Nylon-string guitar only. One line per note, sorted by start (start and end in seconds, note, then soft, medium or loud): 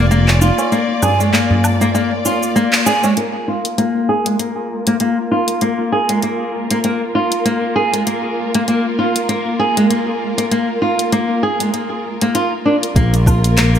0.11 0.27 A#3 medium
0.42 0.71 F4 medium
0.72 1.01 A#3 medium
1.03 1.18 G#4 medium
1.20 1.32 G#3 medium
1.33 1.79 A#3 medium
1.81 1.89 A#3 medium
1.95 2.11 A#3 medium
2.25 2.54 F4 medium
2.56 2.85 A#3 medium
2.86 3.02 G#4 loud
3.04 3.16 G#3 medium
3.17 3.33 A#3 medium
3.48 3.77 F4 medium
3.78 4.07 A#3 medium
4.09 4.24 G#4 medium
4.26 4.38 G#3 medium
4.39 4.85 A#3 medium
4.87 4.95 A#3 medium
5.00 5.17 A#3 medium
5.31 5.61 F4 medium
5.62 5.91 A#3 medium
5.92 6.08 G#4 medium
6.09 6.21 G#3 medium
6.23 6.69 A#3 medium
6.71 6.78 A#3 medium
6.84 7.01 A#3 medium
7.15 7.44 F4 medium
7.45 7.75 A#3 medium
7.76 7.91 G#4 medium
7.93 8.05 G#3 medium
8.07 8.53 A#3 medium
8.55 8.62 A#3 medium
8.68 8.84 A#3 medium
8.99 9.28 F4 medium
9.29 9.58 A#3 medium
9.59 9.75 G#4 medium
9.77 9.89 G#3 medium
9.90 10.36 A#3 medium
10.38 10.46 A#3 medium
10.51 10.68 A#3 medium
10.82 11.11 F4 medium
11.12 11.42 A#3 medium
11.43 11.59 G#4 medium
11.60 11.72 G#3 medium
11.74 11.89 A#3 medium
12.22 12.34 A#3 medium
12.35 12.51 F4 medium
12.65 12.75 D4 medium
12.96 13.13 A#3 medium
13.27 13.56 F4 medium
13.58 13.79 A#3 medium